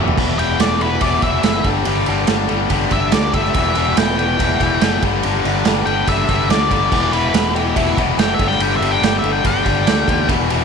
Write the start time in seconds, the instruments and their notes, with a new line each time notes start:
Already playing: fingered electric bass E1, overdriven electric guitar E3 G3 B3 G4
0.00 overdriven electric guitar E2 B2
0.08 floor tom
0.17 fingered electric bass E1, overdriven electric guitar E2 B2 E3 G3 E4 G4, kick, crash
0.38 overdriven electric guitar E2 B2 E3 G3 E4 G4, lead electric guitar G5, ride
0.59 fingered electric bass E1, overdriven electric guitar E2 B2 E3 G3 E4 G4, lead electric guitar D5, snare, ride
0.80 overdriven electric guitar E2 B2 E3 G3 E4 G4, lead electric guitar B4, ride
1.00 fingered electric bass E1, overdriven electric guitar E2 B2 E3 G3 E4 G4, lead electric guitar D5, kick, ride
1.22 fingered electric bass E1, overdriven electric guitar E2 B2 E3 G3 E4 G4, lead electric guitar E5, kick, ride
1.43 fingered electric bass F#1, overdriven electric guitar E2 B2 E3 G3 E4 G4, snare, ride
1.64 fingered electric bass G1, overdriven electric guitar G2 D3 G3 B3 D4 G4, kick, ride
1.85 fingered electric bass G1, overdriven electric guitar G2 D3 G3 B3 D4 G4, ride
2.06 fingered electric bass G1, overdriven electric guitar G2 D3 G3 B3 D4 G4, ride
2.27 fingered electric bass G1, overdriven electric guitar G2 D3 G3 B3 D4 G4, snare, ride
2.49 fingered electric bass G1, overdriven electric guitar G2 D3 G3 B3 D4 G4, ride
2.69 fingered electric bass G1, overdriven electric guitar G2 D3 G3 B3 D4 G4, kick, ride
2.90 fingered electric bass G1, overdriven electric guitar G2 D3 G3 B3 D4 G4, lead electric guitar E5, kick, ride
3.11 fingered electric bass D2, overdriven electric guitar G2 D3 G3 B3 D4 G4, lead electric guitar D5, snare, ride
3.32 fingered electric bass G1, overdriven electric guitar G2 D3 G3 B3 D4 G4, lead electric guitar E5, kick, ride
3.45 snare
3.54 fingered electric bass E1, overdriven electric guitar E2 B2 E3 G3 E4 G4, kick, ride
3.75 overdriven electric guitar E2 B2 E3 G3 E4 G4, ride
3.96 fingered electric bass E1, overdriven electric guitar E2 B2 E3 G3 E4 G4, lead electric guitar G5, snare, ride
4.17 overdriven electric guitar E2 B2 E3 G3 E4 G4, lead electric guitar G5, ride
4.38 fingered electric bass E1, overdriven electric guitar E2 B2 E3 G3 E4 G4, kick, ride
4.60 fingered electric bass E1, overdriven electric guitar E2 B2 E3 G3 E4 G4, kick, ride
4.81 fingered electric bass F#1, overdriven electric guitar E2 B2 E3 G3 E4 G4, snare, ride
5.02 fingered electric bass G1, overdriven electric guitar G2 D3 G3 B3 D4 G4, kick, ride
5.23 fingered electric bass G1, overdriven electric guitar G2 D3 G3 B3 D4 G4, ride
5.44 fingered electric bass G1, overdriven electric guitar G2 D3 G3 B3 D4 G4, ride
5.65 fingered electric bass G1, overdriven electric guitar G2 D3 G3 B3 D4 G4, snare, ride
5.86 fingered electric bass G1, overdriven electric guitar G2 D3 G3 B3 D4 G4, lead electric guitar G5, ride
6.07 fingered electric bass G1, overdriven electric guitar G2 D3 G3 B3 D4 G4, lead electric guitar E5, kick, ride
6.28 fingered electric bass G1, overdriven electric guitar G2 D3 G3 B3 D4 G4, kick, ride
6.49 fingered electric bass D2, overdriven electric guitar G2 D3 G3 B3 D4 G4, lead electric guitar D5, snare, ride
6.71 fingered electric bass G1, overdriven electric guitar G2 D3 G3 B3 D4 G4, kick, ride
6.92 fingered electric bass E1, overdriven electric guitar E2 B2 E3 B3 E4 G4, kick, crash
7.12 overdriven electric guitar E2 B2 E3 B3 E4 G4, lead electric guitar B4, ride
7.33 fingered electric bass E1, overdriven electric guitar E2 B2 E3 B3 E4 G4, snare, ride
7.55 overdriven electric guitar E2 B2 E3 B3 E4 G4, lead electric guitar G4, ride
7.76 fingered electric bass E1, overdriven electric guitar E2 B2 E3 B3 E4 G4, lead electric guitar E4, kick, ride
7.97 fingered electric bass E1, overdriven electric guitar E2 B2 E3 B3 E4 G4, kick, ride
8.17 fingered electric bass F#1, overdriven electric guitar E2 B2 E3 B3 E4 G4, lead electric guitar G5, snare, ride
8.34 lead electric guitar E5
8.39 fingered electric bass G1, overdriven electric guitar G2 D3 G3 B3 D4 G4, kick, ride
8.48 lead electric guitar G5, snare
8.59 fingered electric bass G1, overdriven electric guitar G2 D3 G3 B3 D4 G4, lead electric guitar G5, ride
8.76 lead electric guitar E5
8.81 fingered electric bass G1, overdriven electric guitar G2 D3 G3 B3 D4 G4, ride
8.91 lead electric guitar G5
9.02 fingered electric bass G1, overdriven electric guitar G2 D3 G3 B3 D4 G4, lead electric guitar G5, snare, ride
9.19 lead electric guitar E5
9.24 fingered electric bass G1, overdriven electric guitar G2 D3 G3 B3 D4 G4, ride
9.33 lead electric guitar G5
9.44 fingered electric bass G1, overdriven electric guitar G2 D3 G3 B3 D4 G4, lead electric guitar G5, kick, ride
9.65 fingered electric bass G1, overdriven electric guitar G2 D3 G3 B3 D4 G4, kick, ride
9.87 fingered electric bass D2, overdriven electric guitar G2 D3 G3 B3 D4 G4, snare, ride
10.08 fingered electric bass D#2, overdriven electric guitar G2 D3 G3 B3 D4 G4, kick, ride
10.28 fingered electric bass E1, overdriven electric guitar E2 B2 E3 G3 E4 G4, kick, ride
10.50 overdriven electric guitar E2 B2 E3 G3 E4 G4, ride